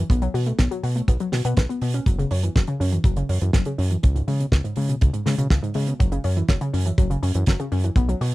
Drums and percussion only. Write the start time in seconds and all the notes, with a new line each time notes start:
0.10 kick, closed hi-hat
0.22 closed hi-hat
0.35 open hi-hat
0.46 closed hi-hat
0.59 kick, snare, closed hi-hat
0.71 closed hi-hat
0.84 open hi-hat
0.97 closed hi-hat
1.08 kick, closed hi-hat
1.20 closed hi-hat
1.32 snare, open hi-hat
1.45 closed hi-hat
1.57 kick, snare, closed hi-hat
1.70 closed hi-hat
1.82 open hi-hat
1.94 closed hi-hat
2.06 kick, closed hi-hat
2.19 closed hi-hat
2.31 open hi-hat
2.44 closed hi-hat
2.56 kick, snare, closed hi-hat
2.67 closed hi-hat
2.81 open hi-hat
2.93 closed hi-hat
3.04 kick, closed hi-hat
3.16 closed hi-hat
3.29 open hi-hat
3.41 closed hi-hat
3.53 kick, snare, closed hi-hat
3.65 closed hi-hat
3.79 open hi-hat
3.90 closed hi-hat
4.03 kick, closed hi-hat
4.16 closed hi-hat
4.28 open hi-hat
4.40 closed hi-hat
4.52 kick, snare, closed hi-hat
4.65 closed hi-hat
4.76 open hi-hat
4.90 closed hi-hat
5.01 kick, closed hi-hat
5.14 closed hi-hat
5.26 snare, open hi-hat
5.38 closed hi-hat
5.50 kick, snare, closed hi-hat
5.64 closed hi-hat
5.74 open hi-hat
5.88 closed hi-hat
6.00 kick, closed hi-hat
6.12 closed hi-hat
6.24 open hi-hat
6.37 closed hi-hat
6.48 kick, snare, closed hi-hat
6.61 closed hi-hat
6.74 open hi-hat
6.86 closed hi-hat
6.98 kick, closed hi-hat
7.11 closed hi-hat
7.23 open hi-hat
7.34 closed hi-hat
7.46 kick, snare, closed hi-hat
7.60 closed hi-hat
7.72 open hi-hat
7.84 closed hi-hat
7.96 kick, closed hi-hat
8.09 closed hi-hat
8.21 open hi-hat